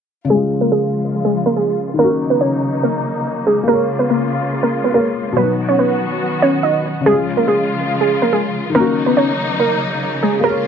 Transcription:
0.25 1.93 C#3 medium
0.30 1.97 C#3 medium
0.30 1.97 F3 medium
0.30 1.95 G#3 medium
0.30 1.97 G#3 medium
0.30 0.60 G#3 medium
0.30 1.97 F4 medium
0.30 0.60 G#4 loud
0.35 1.98 F4 medium
0.61 0.71 A#3 medium
0.61 0.71 A#4 medium
0.72 1.22 G#3 medium
0.72 1.22 G#4 medium
1.25 1.44 G#3 medium
1.25 1.44 G#4 medium
1.46 1.56 A#3 medium
1.46 1.55 A#4 medium
1.57 1.76 G#3 medium
1.57 1.75 G#4 medium
1.94 3.62 D#3 medium
1.99 3.66 C#3 medium
1.99 3.66 F#3 medium
1.99 5.33 A#3 medium
1.99 2.29 A#3 medium
1.99 3.64 C#4 medium
1.99 3.66 D#4 medium
1.99 2.29 A#4 loud
2.04 3.67 F#4 medium
2.30 2.40 B3 medium
2.30 2.40 B4 medium
2.41 2.81 C#4 medium
2.41 2.81 C#5 medium
2.83 3.43 A#3 medium
2.83 3.43 A#4 medium
3.47 3.66 G#3 medium
3.47 3.65 G#4 medium
3.63 4.90 A#3 medium
3.68 5.35 C#3 medium
3.68 5.35 G#3 medium
3.68 3.98 A#3 medium
3.68 5.35 F4 medium
3.68 4.92 G#4 medium
3.68 3.98 A#4 loud
3.73 4.95 C#5 medium
3.99 4.09 B3 medium
3.99 4.09 B4 medium
4.10 4.60 A#3 medium
4.10 4.60 A#4 medium
4.63 4.82 A#3 medium
4.63 4.82 A#4 medium
4.84 4.94 B3 medium
4.84 4.94 B4 medium
4.92 5.36 A#3 soft
4.92 5.14 A#3 medium
4.92 5.37 G#4 soft
4.92 5.13 A#4 medium
4.97 5.38 C#5 medium
5.32 7.00 B2 medium
5.37 7.04 D#3 medium
5.37 7.04 F#3 medium
5.37 7.03 F#3 medium
5.37 7.04 B3 medium
5.37 5.67 B3 medium
5.37 7.04 F#4 medium
5.37 5.67 B4 loud
5.42 7.05 D#4 medium
5.69 5.78 C#4 medium
5.69 5.78 C#5 medium
5.79 6.39 B3 medium
5.79 6.39 B4 medium
6.42 6.62 C#4 medium
6.42 6.61 C#5 medium
6.63 7.04 D#4 medium
6.63 7.03 D#5 medium
7.01 8.69 C#3 medium
7.06 8.73 C#3 medium
7.06 8.73 F3 medium
7.06 8.71 G#3 medium
7.06 8.73 G#3 medium
7.06 7.36 G#3 medium
7.06 8.73 F4 medium
7.06 7.36 G#4 loud
7.11 8.74 F4 medium
7.37 7.47 A#3 medium
7.37 7.47 A#4 medium
7.48 7.98 G#3 medium
7.48 7.98 G#4 medium
8.01 8.20 G#3 medium
8.01 8.20 G#4 medium
8.22 8.32 A#3 medium
8.22 8.31 A#4 medium
8.33 8.52 G#3 medium
8.33 8.51 G#4 medium
8.70 10.38 D#3 medium
8.75 10.67 C#3 medium
8.75 10.42 F#3 medium
8.75 10.42 A#3 medium
8.75 9.05 A#3 medium
8.75 10.40 C#4 medium
8.75 10.42 D#4 medium
8.75 9.05 A#4 loud
8.80 10.43 F#4 medium
9.06 9.16 B3 medium
9.06 9.16 B4 medium
9.17 9.57 C#4 medium
9.17 9.57 C#5 medium
9.60 10.19 A#3 medium
9.60 10.19 A#4 medium
10.23 10.42 G#3 medium
10.23 10.41 G#4 medium
10.39 10.67 A#3 medium
10.44 10.67 G#3 medium
10.44 10.67 A#3 medium
10.44 10.67 F4 medium
10.44 10.67 G#4 medium
10.44 10.67 A#4 loud
10.49 10.67 C#5 medium

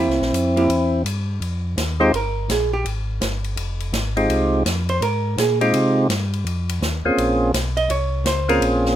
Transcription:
0.00 0.18 A#3 soft
0.00 1.03 C4 medium
0.00 0.18 E4 medium
0.00 1.02 E4 medium
0.00 0.19 G4 soft
0.08 0.21 C2 medium
0.08 snare soft
0.20 0.32 A#1 medium
0.20 snare soft
0.33 0.68 F2 medium
0.33 hi-hat pedal soft
0.33 ride medium
0.56 0.68 A#3 medium
0.56 0.69 E4 medium
0.56 0.69 G4 medium
0.56 ride soft
0.69 1.04 E2 medium
0.69 ride medium
1.05 1.40 G2 medium
1.05 hi-hat pedal soft
1.05 ride medium
1.40 1.76 F2 medium
1.40 ride medium
1.77 2.12 D#2 medium
1.77 snare medium
1.77 hi-hat pedal medium
1.77 ride medium
2.00 2.12 G#3 medium
2.00 2.12 C4 medium
2.00 2.12 D#4 medium
2.00 2.12 F4 medium
2.00 2.12 G4 medium
2.00 2.13 C5 medium
2.13 2.48 G1 medium
2.13 2.48 A#4 medium
2.13 ride medium
2.49 2.84 A#1 medium
2.49 2.73 G#4 medium
2.49 snare medium
2.49 hi-hat pedal soft
2.49 ride medium
2.73 2.86 G4 medium
2.85 3.20 G#1 medium
2.85 ride medium
3.21 3.56 G1 medium
3.21 snare medium
3.21 hi-hat pedal medium
3.21 ride medium
3.44 ride soft
3.57 3.92 F1 medium
3.57 ride medium
3.80 ride soft
3.93 4.28 G#1 medium
3.93 snare medium
3.93 hi-hat pedal medium
3.93 ride medium
4.17 4.63 G#3 medium
4.17 4.63 C4 medium
4.17 4.63 D#4 medium
4.17 4.63 F4 medium
4.17 4.63 G4 medium
4.17 ride soft
4.29 4.64 C2 medium
4.29 ride medium
4.65 5.00 F2 medium
4.65 snare medium
4.65 hi-hat pedal medium
4.65 ride medium
4.89 5.02 C5 medium
4.89 ride soft
5.01 5.36 G#2 medium
5.01 5.36 A#4 medium
5.01 ride medium
5.38 5.73 A#2 medium
5.38 5.61 G#4 medium
5.38 snare medium
5.38 hi-hat pedal medium
5.38 ride medium
5.61 6.07 G#3 medium
5.61 6.07 C4 medium
5.61 6.08 D#4 medium
5.61 6.08 F4 medium
5.61 5.74 G4 medium
5.61 6.08 G4 medium
5.61 ride soft
5.74 6.09 C3 medium
5.74 ride medium
6.09 6.44 G2 medium
6.09 snare medium
6.09 hi-hat pedal soft
6.09 ride medium
6.33 ride soft
6.45 6.80 F2 medium
6.45 ride medium
6.69 ride medium
6.81 7.03 D#2 medium
6.81 snare medium
6.81 hi-hat pedal medium
7.04 7.11 D#2 soft
7.04 7.52 A#3 medium
7.04 7.52 C4 medium
7.04 7.52 C#4 medium
7.04 7.52 F4 medium
7.04 7.52 G#4 medium
7.17 7.53 A#1 medium
7.17 ride medium
7.53 7.88 B1 medium
7.53 snare medium
7.53 hi-hat pedal medium
7.53 ride medium
7.77 7.90 D#5 medium
7.77 ride soft
7.89 8.25 C2 medium
7.89 8.24 C#5 medium
7.89 ride medium
8.24 8.60 C#2 medium
8.24 8.49 C5 medium
8.24 snare medium
8.24 hi-hat pedal medium
8.24 ride medium
8.49 8.95 A#3 medium
8.49 8.95 C4 medium
8.49 8.96 C#4 medium
8.49 8.96 F4 medium
8.49 8.96 G#4 medium
8.49 8.62 A#4 medium
8.49 ride soft
8.61 8.96 A#1 medium
8.61 ride medium
8.85 snare soft

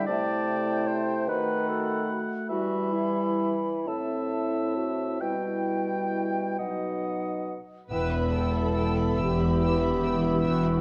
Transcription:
0.06 1.29 C3 medium
0.06 1.26 A3 soft
0.06 1.26 E4 soft
0.06 0.89 D5 medium
0.06 1.30 G5 soft
0.06 1.25 A5 soft
0.87 1.29 C5 medium
1.28 2.21 D#3 soft
1.28 2.48 A3 soft
1.28 2.47 F#4 soft
1.28 1.70 B4 medium
1.28 2.48 F#5 soft
1.28 2.20 B5 soft
1.68 2.09 A4 medium
2.49 3.89 E3 soft
2.49 3.69 G3 soft
2.49 3.69 E4 soft
2.49 2.94 F#4 medium
2.49 3.52 E5 soft
2.49 3.89 B5 soft
2.93 3.87 E4 soft
3.86 5.20 A2 soft
3.86 5.22 C4 soft
3.86 5.19 E4 soft
3.86 4.75 A4 medium
3.86 5.22 E5 soft
3.86 5.22 A5 soft
4.77 5.24 F#4 soft
5.21 6.55 B2 soft
5.21 6.56 G3 soft
5.21 6.56 E4 soft
5.21 6.59 E4 soft
5.21 6.58 G5 soft
5.21 6.60 G5 soft
6.59 7.55 B2 soft
6.59 7.58 F#3 soft
6.59 7.58 D#4 soft
6.59 7.55 D#5 soft
6.59 7.57 F#5 soft
7.90 9.04 E1 soft
7.90 9.04 E2 soft
7.90 10.81 B3 soft
7.90 10.81 E4 soft
7.90 8.30 B4 medium
7.90 8.11 B4 soft
7.90 10.81 E5 soft
7.90 8.11 G5 soft
7.90 10.81 B5 soft
7.90 8.11 E6 soft
8.12 8.33 E5 soft
8.12 8.34 B5 soft
8.32 9.17 A4 medium
8.32 8.55 B4 soft
8.32 8.54 G5 soft
8.32 8.54 E6 soft
8.54 8.76 E5 soft
8.54 8.76 B5 soft
8.76 8.96 B4 soft
8.76 8.96 G5 soft
8.76 8.96 E6 soft
8.97 9.19 E5 soft
8.97 9.19 B5 soft
9.17 10.29 E1 medium
9.17 10.29 E2 medium
9.17 10.44 G4 medium
9.17 9.40 B4 soft
9.17 9.40 G5 soft
9.17 9.39 E6 soft
9.39 9.61 E5 soft
9.39 9.61 B5 soft
9.62 9.81 B4 soft
9.62 9.81 G5 soft
9.62 9.81 E6 soft
9.81 10.03 E5 soft
9.81 10.03 B5 soft
10.03 10.23 B4 soft
10.03 10.23 G5 soft
10.03 10.24 E6 soft
10.22 10.41 E5 soft
10.22 10.43 B5 soft
10.42 10.81 E1 soft
10.42 10.81 E2 medium
10.42 10.81 F#4 medium
10.42 10.61 E5 soft
10.42 10.61 G5 soft
10.42 10.61 E6 soft
10.62 10.81 E5 soft
10.62 10.81 G5 soft
10.62 10.81 B5 soft

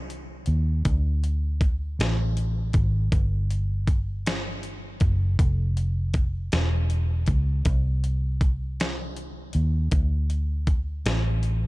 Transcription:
0.00 0.44 C2 medium
0.10 closed hi-hat medium
0.46 0.82 D#2 medium
0.46 closed hi-hat medium
0.85 1.95 D2 loud
0.85 kick loud
0.85 closed hi-hat medium
1.24 closed hi-hat medium
1.61 kick loud
1.61 closed hi-hat medium
1.99 2.71 A1 medium
1.99 snare loud
1.99 closed hi-hat medium
2.37 closed hi-hat medium
2.73 3.09 G#1 medium
2.73 kick loud
2.73 closed hi-hat soft
3.12 4.97 G1 loud
3.12 kick loud
3.12 closed hi-hat medium
3.51 closed hi-hat medium
3.87 kick loud
3.87 closed hi-hat medium
4.26 snare loud
4.26 closed hi-hat medium
4.63 closed hi-hat medium
5.00 5.35 F#1 loud
5.00 kick medium
5.00 closed hi-hat medium
5.39 6.48 F1 loud
5.39 kick loud
5.39 closed hi-hat medium
5.77 closed hi-hat medium
6.14 kick loud
6.14 closed hi-hat medium
6.52 7.24 E1 medium
6.52 snare loud
6.52 closed hi-hat medium
6.90 closed hi-hat medium
7.26 7.62 C#2 medium
7.26 kick medium
7.26 closed hi-hat medium
7.65 9.50 C2 loud
7.65 kick loud
7.65 closed hi-hat medium
8.04 closed hi-hat medium
8.41 kick loud
8.41 closed hi-hat medium
8.80 snare loud
8.80 closed hi-hat medium
9.17 closed hi-hat medium
9.53 9.88 D#2 medium
9.53 closed hi-hat medium
9.91 11.01 D2 loud
9.91 kick loud
9.91 closed hi-hat medium
10.30 closed hi-hat medium
10.67 kick loud
10.67 closed hi-hat soft
11.06 11.67 A1 loud
11.06 snare loud
11.06 closed hi-hat medium
11.43 closed hi-hat medium

